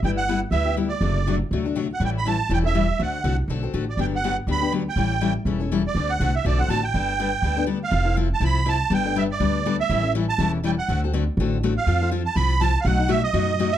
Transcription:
X:1
M:4/4
L:1/16
Q:"Swing" 1/4=243
K:G
V:1 name="Accordion"
g2 f4 z2 e4 z2 d2- | d6 z8 f2 | g2 b2 a4 g2 e6 | f6 z8 d2 |
g2 f4 z2 b4 z2 g2- | g6 z8 d2- | d2 f4 e2 d2 f2 a2 g2- | g12 z2 =f2- |
=f4 z2 a2 b4 a4 | g4 e2 d8 e2- | e4 z2 a4 z2 g2 f2- | f2 z12 =f2- |
=f4 z2 a2 b4 a3 f | f4 e2 ^d8 e2 |]
V:2 name="Steel-string acoustic guitar"
[G,B,EG]2 z2 [G,B,EG]2 z2 [G,B,EG]2 [B,EG]2 [G,B,EG]2 z2 | [C,F,A,DF]2 z2 [C,F,A,DF]2 z2 [C,F,A,DF]2 [A,DF]2 [C,F,A,DF]2 z2 | [E,G,^CEA]2 z2 [E,G,CEA]2 z2 [E,G,CEA]2 [CEA]2 [E,G,CEA]2 z2 | [D,A,CFA]2 z2 [D,A,CFA]2 z2 [D,A,CFA]2 [CFA]2 [D,A,CFA]2 z2 |
[D,F,B,DG]2 z2 [D,F,B,DG]2 z2 [D,F,B,DG]2 [B,DG]2 [D,F,B,DG]2 z2 | [E,G,^CEA]2 z2 [E,G,CEA]2 z2 [E,G,CEA]2 [CEA]2 [E,G,CEA]2 z2 | [D,A,CFA]2 z2 [D,A,CFA]2 z2 [D,A,CFA]2 [CFA]2 [D,A,CFA]2 z2 | [G,B,DA]2 z2 [G,B,DA]2 z2 [G,B,DA]2 [B,DA]2 [G,B,DA]2 z2 |
[=F,CEA]2 [CEA]2 [F,CEA]2 z2 [F,CEA]2 z2 [F,CEA]2 z2 | [G,B,DA]2 [B,DA]2 [G,B,DA]2 z2 [G,B,DA]2 z2 [G,B,DA]2 z2 | [E,G,^CEA]2 [CEA]2 [E,G,CEA]2 z2 [E,G,CEA]2 z2 [E,G,CEA]2 z2 | [D,A,CFA]2 [CFA]2 [D,A,CFA]2 z2 [D,A,CFA]2 z2 [D,A,CFA]2 z2 |
[=F,C=FA]2 [CFA]2 [F,CFA]2 z2 [F,CFA]2 z2 [F,CFA]2 z2 | [B,,F,A,^DF]2 [A,DF]2 [B,,F,A,DF]2 z2 [B,,F,A,DF]2 z2 [B,,F,A,DF]2 z2 |]
V:3 name="Upright bass" clef=bass
G,,,8 D,,8 | F,,,8 D,,8 | A,,,8 E,,,8 | D,,4 C,,4 B,,,4 A,,,4 |
G,,,8 D,,8 | A,,,8 E,,,8 | D,,4 C,,4 B,,,4 A,,,4 | G,,,8 D,,8 |
=F,,,8 C,,8 | G,,,8 D,,8 | A,,,8 E,,,8 | D,,8 A,,,8 |
=F,,8 C,,8 | B,,,8 F,,8 |]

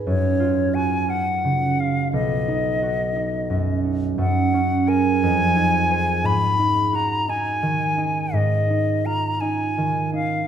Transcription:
X:1
M:6/8
L:1/8
Q:3/8=58
K:Abdor
V:1 name="Flute"
d2 a g2 f | ^d4- d z | g2 a4 | c'2 b a3 |
e2 b a2 f |]
V:2 name="Harp"
G,, F G F D, F | =B,,, ^D ^F D ^F,, D | G,, D [AB] F,, E [A=c] | A,, E G E E, E |
A,, E F E E, E |]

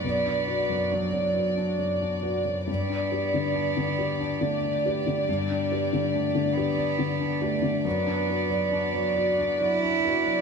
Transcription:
X:1
M:3/4
L:1/16
Q:1/4=69
K:Bm
V:1 name="Violin section"
d12 | d12- | d12 | d12 |]
V:2 name="String section"
[B,Fd]12 | [B,Gd]12- | [B,Gd]12 | [B,Fd]12 |]
V:3 name="Felt piano"
[B,,,F,,] D [FB] F,, D F,, [FB] D F,, D [FB] F,, | G,, D [GB] D, D D, [GB] D D, D [GB] D, | G,, D [GB] D, D D, [GB] D D, D [GB] D, | F,, D [FB] F, D F, [FB] D F, D [FB] F, |]
V:4 name="Cello"
B,4 F,4 z4 | B,8 A,4 | G,4 A,2 B,4 A,2 | B,8 E4 |]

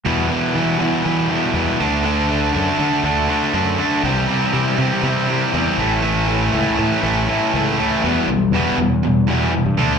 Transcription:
X:1
M:4/4
L:1/16
Q:1/4=120
K:Em
V:1 name="Overdriven electric guitar"
[E,G,B,E]2 [E,G,B,E]2 [E,G,B,E]2 [E,G,B,E]2 [E,G,B,E]2 [E,G,B,E]2 [E,G,B,E]2 [D,A,DF]2 | [D,A,DF]2 [D,A,DF]2 [D,A,DF]2 [D,A,DF]2 [D,A,DF]2 [D,A,DF]2 [D,A,DF]2 [D,A,DF]2 | [C,E,G,CE]2 [C,E,G,CE]2 [C,E,G,CE]2 [C,E,G,CE]2 [C,E,G,CE]2 [C,E,G,CE]2 [C,E,G,CE]2 [A,,E,A,^CE]2 | [A,,E,A,^CE]2 [A,,E,A,CE]2 [A,,E,A,CE]2 [A,,E,A,CE]2 [A,,E,A,CE]2 [A,,E,A,CE]2 [A,,E,A,CE]2 [A,,E,A,CE]2 |
[E,G,B,]2 [E,G,]2 [E,G,B,]2 [E,G,]2 [E,G,]2 [E,G,B,]2 [E,G,]2 [D,A,D]2 |]
V:2 name="Overdriven electric guitar" clef=bass
[E,,B,,E,]2 [E,,B,,E,]2 [E,,B,,E,]2 [E,,B,,E,]2 [E,,B,,E,]2 [E,,B,,E,]2 [E,,B,,E,]2 [D,A,D]2 | [D,A,D]2 [D,A,D]2 [D,A,D]2 [D,A,D]2 [D,A,D]2 [D,A,D]2 [D,A,D]2 [D,A,D]2 | [C,G,C]2 [C,G,C]2 [C,G,C]2 [C,G,C]2 [C,G,C]2 [C,G,C]2 [C,G,C]2 [A,,E,A,]2 | [A,,E,A,]2 [A,,E,A,]2 [A,,E,A,]2 [A,,E,A,]2 [A,,E,A,]2 [A,,E,A,]2 [A,,E,A,]2 [A,,E,A,]2 |
[E,,B,,E,]2 [E,,B,,]2 [E,,B,,E,]2 [E,,B,,]2 [E,,B,,]2 [E,,B,,E,]2 [E,,B,,]2 [D,A,D]2 |]
V:3 name="Fingered electric bass" clef=bass
E,,2 z2 E,2 E, z E,2 z2 E,, z D,,2- | D,,4 F,, z D, z D,,2 z2 F,,2 z2 | C,,2 z2 C,2 C, z C,2 z2 E,, z A,,,2- | A,,,4 ^C,, z A,, z A,,,2 z2 C,,2 z2 |
E,, z B,,,2 E,, z E,,6- E,, G,, D,,2 |]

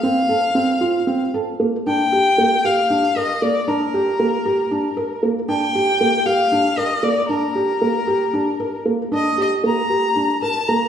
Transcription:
X:1
M:7/8
L:1/8
Q:1/4=116
K:Bb
V:1 name="Violin"
f4- f z2 | g3 f2 e d | B6 z | g3 f2 e d |
B6 z | e e b3 a b |]
V:2 name="Felt piano"
C A C F C A B, | D G B, G D B B, | D G B, G D B B, | D G B, G D B B, |
D G B, G D B B, | D G B, G D B B, |]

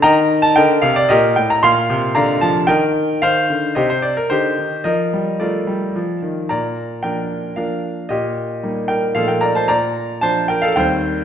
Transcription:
X:1
M:3/4
L:1/16
Q:1/4=113
K:Bb
V:1 name="Grand piano"
[egb]3 a [Beg]2 f d [GBe]2 g b | [fc']4 [dfb]2 a2 [Beg]4 | [cf]4 [Gce] c d B [EGc]4 | [Be]4 [FBd]6 z2 |
[db]4 [Bg]4 [Bf]4 | [Ge]6 [Bg]2 [Af] [Bg] [db] [ca] | [db]4 [ca]2 [Bg] [Af] [cg]4 |]
V:2 name="Grand piano" clef=bass
E,4 D,2 C,2 B,,2 A,,2 | B,,2 C,2 D,2 F,2 E,4 | E,2 D,2 C,4 D,2 E,2 | F,2 G,2 A,2 G,2 F,2 E,2 |
B,,4 [F,B,D]4 [F,B,D]4 | B,,4 [G,B,E]4 [B,,F,A,E]4 | B,,4 [F,D]4 [E,,E,G,C]4 |]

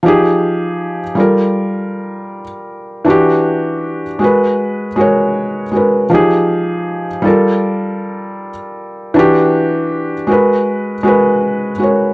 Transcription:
X:1
M:4/4
L:1/8
Q:"Swing 16ths" 1/4=79
K:Gphr
V:1 name="Felt piano"
[F,EGA]2 z [G,F=AB]3 z2 | [=E,D^FG]2 z [A,_GB_c]2 [A,GB_d]2 [A,GBc] | [F,EGA]2 z [G,F=AB]3 z2 | [=E,D^FG]2 z [A,_GB_c]2 [A,GBc]2 [A,GB_d] |]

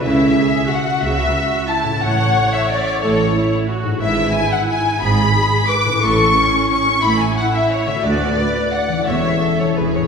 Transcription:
X:1
M:3/4
L:1/8
Q:1/4=178
K:A
V:1 name="Violin section"
e4 f2 | e4 a2 | f3 e d2 | c3 z3 |
e2 g f g2 | b4 d'2 | c'4 c'2 | b g f e c e |
d4 f2 | e3 c B c |]
V:2 name="Violin section"
e4 f2 | e4 a2 | f3 e d2 | c3 z3 |
e2 g f g2 | b4 d'2 | c'4 c'2 | b g f e c e |
d4 f2 | e3 c B c |]
V:3 name="Viola section"
E2 G2 F2- | F4 E2 | c6 | A2 E2 F2 |
E6 | G2 G2 B2 | A2 C4 | E6 |
F2 B2 d2 | c2 A2 G2 |]
V:4 name="Harp"
[C,CEA]6- | [C,CEA]6 | [A,,CE]6- | [A,,CE]6 |
[G,,DEB]6- | [G,,DEB]6 | [A,,CEA]6- | [A,,CEA]6 |
[D,B,FB]6 | [E,CEA]4 [E,DEG]2 |]
V:5 name="Cello section" clef=bass
C,2 z4 | C,2 z4 | A,,2 z4 | A,,2 z4 |
G,,2 z4 | G,,2 z4 | A,,2 z4 | A,,2 z4 |
D,,2 z4 | E,,2 z2 E,,2 |]
V:6 name="Double bass section" clef=bass
C,,2 z4 | C,,2 z4 | A,,,2 z4 | A,,,2 z4 |
G,,,2 z4 | G,,,2 z4 | A,,,2 z4 | A,,,2 z4 |
D,,2 z4 | E,,,2 z2 E,,,2 |]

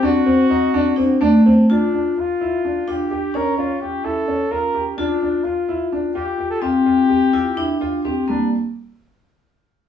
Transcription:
X:1
M:7/8
L:1/16
Q:1/4=127
K:Dphr
V:1 name="Flugelhorn"
^F12 z2 | [K:Gdor] D4 F6 G4 | B2 F2 G2 A4 B3 z | D4 F4 z2 G3 A |
G12 z2 | D2 z12 |]
V:2 name="Grand piano"
D2 C2 E2 D2 C2 D2 C2 | [K:Gdor] D2 D2 F2 E2 D2 F2 G2 | ^C2 C2 F2 E2 C2 F2 G2 | D2 D2 F2 E2 D2 F2 G2 |
F2 F2 G2 F2 E2 F2 G2 | G,2 z12 |]
V:3 name="Vibraphone"
C8 D2 A,4 | [K:Gdor] F8- F2 D4 | ^C12- C2 | F12- F2 |
C6 E2 D4 C2 | B,2 z12 |]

